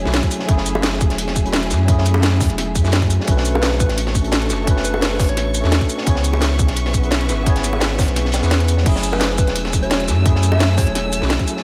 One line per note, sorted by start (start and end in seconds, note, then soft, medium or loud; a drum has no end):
0.00 0.03 F#3 loud
0.00 0.44 F#3 medium
0.00 0.04 A3 medium
0.00 0.06 C#4 medium
0.00 0.08 E4 medium
0.00 0.09 F#4 medium
0.00 0.52 G#4 loud
0.00 3.24 G#4 medium
0.00 0.10 C#5 loud
0.00 3.24 E5 medium
0.04 0.21 B1 medium
0.04 0.46 A3 medium
0.04 0.47 C#4 medium
0.04 0.48 E4 medium
0.04 snare soft
0.09 0.48 F#4 medium
0.14 snare loud
0.14 closed hi-hat medium
0.23 kick medium
0.23 closed hi-hat soft
0.31 closed hi-hat medium
0.31 shaker medium
0.39 snare soft
0.45 1.09 F#1 loud
0.45 1.41 F#3 loud
0.45 1.42 A3 medium
0.45 1.43 C#4 medium
0.45 kick loud
0.45 closed hi-hat medium
0.51 1.44 E4 medium
0.51 1.45 G#4 loud
0.57 snare medium
0.66 closed hi-hat medium
0.66 shaker medium
0.75 high bongo loud
0.83 snare loud
0.83 closed hi-hat medium
1.01 kick loud
1.01 closed hi-hat medium
1.01 shaker medium
1.10 1.72 E1 medium
1.10 snare soft
1.10 closed hi-hat soft
1.18 closed hi-hat medium
1.18 closed hi-hat loud
1.27 snare soft
1.35 kick medium
1.35 closed hi-hat medium
1.35 shaker medium
1.42 1.84 F#3 medium
1.42 1.85 A3 medium
1.42 1.86 C#4 medium
1.42 closed hi-hat soft
1.47 1.87 E4 medium
1.47 1.88 F#4 medium
1.53 snare loud
1.53 closed hi-hat medium
1.53 closed hi-hat loud
1.63 closed hi-hat soft
1.70 2.48 F#2 medium
1.70 snare soft
1.70 closed hi-hat medium
1.70 shaker medium
1.85 2.80 F#3 loud
1.85 2.82 A3 medium
1.85 2.82 C#4 medium
1.85 kick loud
1.85 closed hi-hat medium
1.90 2.83 E4 medium
1.90 2.84 G#4 loud
1.98 snare soft
2.05 snare soft
2.05 closed hi-hat medium
2.05 shaker medium
2.14 high bongo loud
2.23 snare loud
2.23 closed hi-hat medium
2.40 kick loud
2.40 snare medium
2.40 closed hi-hat medium
2.40 open hi-hat medium
2.40 shaker medium
2.50 2.77 E1 medium
2.50 closed hi-hat soft
2.58 snare soft
2.58 closed hi-hat medium
2.75 3.18 F#2 medium
2.75 kick medium
2.75 closed hi-hat medium
2.75 shaker medium
2.81 3.24 F#3 medium
2.81 3.23 A3 medium
2.81 3.25 C#4 medium
2.81 snare soft
2.81 shaker soft
2.86 3.26 E4 medium
2.86 3.27 F#4 medium
2.92 snare loud
2.92 closed hi-hat medium
3.02 kick medium
3.02 closed hi-hat soft
3.10 closed hi-hat medium
3.10 shaker medium
3.20 4.20 A3 loud
3.20 snare soft
3.26 3.88 B1 loud
3.26 4.21 C#4 medium
3.26 4.22 D4 medium
3.26 4.23 F#4 medium
3.26 6.04 A4 medium
3.26 8.82 C#6 loud
3.26 kick loud
3.26 closed hi-hat medium
3.31 4.24 B4 loud
3.37 snare medium
3.45 closed hi-hat medium
3.45 shaker medium
3.55 3.75 B4 medium
3.55 high bongo loud
3.62 snare loud
3.62 closed hi-hat medium
3.80 4.01 B4 medium
3.80 kick loud
3.80 closed hi-hat medium
3.80 shaker medium
3.89 4.51 A1 medium
3.89 snare soft
3.89 closed hi-hat soft
3.98 closed hi-hat loud
3.98 closed hi-hat medium
4.07 snare soft
4.15 kick medium
4.15 closed hi-hat medium
4.15 shaker medium
4.21 4.63 A3 medium
4.21 4.64 C#4 medium
4.21 4.65 D4 medium
4.21 closed hi-hat soft
4.26 4.66 F#4 medium
4.26 4.67 A4 medium
4.32 snare loud
4.32 closed hi-hat loud
4.32 closed hi-hat medium
4.42 closed hi-hat soft
4.50 5.27 F#1 medium
4.50 snare soft
4.50 closed hi-hat medium
4.50 shaker medium
4.64 5.59 A3 loud
4.64 5.61 C#4 medium
4.64 5.61 D4 medium
4.64 kick loud
4.64 closed hi-hat medium
4.64 closed hi-hat loud
4.69 5.62 F#4 medium
4.69 5.63 B4 loud
4.77 snare soft
4.84 5.00 B4 medium
4.84 closed hi-hat medium
4.84 shaker medium
4.94 high bongo medium
5.02 5.27 B4 medium
5.02 snare loud
5.02 closed hi-hat medium
5.19 kick loud
5.19 snare medium
5.19 closed hi-hat medium
5.19 open hi-hat medium
5.19 shaker medium
5.29 5.62 A1 medium
5.29 5.78 C#5 medium
5.29 closed hi-hat soft
5.37 snare soft
5.37 closed hi-hat medium
5.37 closed hi-hat loud
5.54 closed hi-hat medium
5.54 shaker medium
5.60 5.79 E2 loud
5.60 6.03 A3 medium
5.60 6.04 C#4 medium
5.60 6.05 D4 medium
5.60 snare soft
5.65 6.06 F#4 medium
5.65 6.06 A4 medium
5.72 snare loud
5.72 closed hi-hat medium
5.81 kick medium
5.81 closed hi-hat soft
5.89 closed hi-hat medium
5.89 shaker medium
5.98 snare soft
6.03 6.67 C#2 loud
6.03 6.99 B3 loud
6.03 7.00 C#4 medium
6.03 7.01 E4 medium
6.03 8.83 B4 medium
6.03 8.83 E5 medium
6.03 kick loud
6.03 closed hi-hat medium
6.03 closed hi-hat loud
6.08 7.02 G#4 medium
6.08 7.03 C#5 loud
6.15 snare medium
6.24 closed hi-hat medium
6.24 shaker medium
6.33 high bongo medium
6.41 snare loud
6.41 closed hi-hat loud
6.41 closed hi-hat medium
6.58 kick loud
6.58 closed hi-hat medium
6.58 shaker medium
6.67 7.30 B1 medium
6.67 snare soft
6.67 closed hi-hat soft
6.76 closed hi-hat medium
6.86 snare soft
6.94 kick medium
6.94 closed hi-hat medium
6.94 shaker medium
7.00 7.42 B3 medium
7.00 7.43 C#4 medium
7.00 7.44 E4 medium
7.00 closed hi-hat soft
7.05 7.45 G#4 medium
7.05 7.46 B4 medium
7.11 snare loud
7.11 closed hi-hat medium
7.21 closed hi-hat soft
7.29 8.06 G#1 medium
7.29 snare soft
7.29 closed hi-hat medium
7.29 shaker medium
7.43 8.38 B3 medium
7.43 8.40 C#4 medium
7.43 8.41 E4 medium
7.43 kick loud
7.43 closed hi-hat medium
7.43 closed hi-hat loud
7.48 8.41 G#4 medium
7.48 8.42 C#5 loud
7.56 snare soft
7.56 closed hi-hat soft
7.64 snare soft
7.64 closed hi-hat medium
7.64 shaker medium
7.73 high bongo medium
7.81 snare loud
7.81 closed hi-hat medium
7.81 closed hi-hat loud
7.99 kick loud
7.99 snare loud
7.99 closed hi-hat medium
7.99 open hi-hat medium
7.99 shaker medium
8.08 8.41 B1 medium
8.08 closed hi-hat soft
8.16 snare soft
8.16 closed hi-hat medium
8.16 closed hi-hat loud
8.16 shaker soft
8.25 snare soft
8.32 snare loud
8.32 closed hi-hat medium
8.34 closed hi-hat medium
8.34 shaker medium
8.40 8.85 E2 medium
8.40 8.82 B3 medium
8.40 8.83 C#4 medium
8.40 8.84 E4 medium
8.40 snare soft
8.40 shaker soft
8.45 8.85 G#4 medium
8.45 8.86 B4 medium
8.51 snare loud
8.51 closed hi-hat loud
8.60 closed hi-hat soft
8.68 closed hi-hat medium
8.68 shaker medium
8.77 snare soft
8.83 9.46 F#1 loud
8.83 9.78 F#3 loud
8.83 9.79 A3 medium
8.83 11.63 A3 medium
8.83 9.80 C#4 medium
8.83 11.63 G#5 medium
8.83 11.63 E6 loud
8.83 kick loud
8.83 closed hi-hat loud
8.83 closed hi-hat medium
8.83 crash medium
8.88 9.81 E4 medium
8.88 9.82 G#4 loud
8.96 snare medium
9.03 closed hi-hat medium
9.03 shaker medium
9.12 9.33 B4 medium
9.12 high bongo medium
9.21 snare loud
9.21 closed hi-hat loud
9.21 closed hi-hat medium
9.38 9.59 B4 medium
9.38 kick loud
9.38 closed hi-hat medium
9.38 shaker medium
9.47 10.10 E1 medium
9.47 snare soft
9.47 closed hi-hat soft
9.56 closed hi-hat medium
9.56 closed hi-hat loud
9.65 snare soft
9.73 kick medium
9.73 closed hi-hat medium
9.73 shaker medium
9.79 10.21 F#3 medium
9.79 10.23 A3 medium
9.79 10.23 C#4 medium
9.79 10.03 C#5 medium
9.79 closed hi-hat soft
9.84 10.24 E4 medium
9.84 10.25 F#4 medium
9.91 snare loud
9.91 closed hi-hat loud
9.91 closed hi-hat medium
10.00 closed hi-hat soft
10.08 10.86 F#2 medium
10.08 snare soft
10.08 closed hi-hat medium
10.08 shaker medium
10.22 11.17 F#3 medium
10.22 11.19 A3 medium
10.22 11.20 C#4 medium
10.22 kick loud
10.22 closed hi-hat medium
10.27 11.20 E4 medium
10.27 11.21 G#4 loud
10.35 snare soft
10.43 closed hi-hat medium
10.43 shaker medium
10.52 10.73 E5 medium
10.52 high bongo loud
10.60 snare loud
10.60 closed hi-hat loud
10.60 closed hi-hat medium
10.78 11.27 C#5 medium
10.78 kick loud
10.78 snare medium
10.78 closed hi-hat medium
10.78 open hi-hat medium
10.78 shaker medium
10.87 11.20 E1 medium
10.87 closed hi-hat soft
10.95 snare medium
10.95 closed hi-hat loud
10.95 closed hi-hat medium
11.13 closed hi-hat medium
11.13 shaker medium
11.19 11.37 B1 loud
11.19 11.61 F#3 medium
11.19 11.62 A3 medium
11.19 11.63 C#4 medium
11.19 snare soft
11.24 11.63 E4 medium
11.24 11.63 F#4 medium
11.30 snare loud
11.30 closed hi-hat loud
11.39 kick medium
11.39 closed hi-hat soft
11.47 closed hi-hat medium
11.47 shaker medium
11.57 snare soft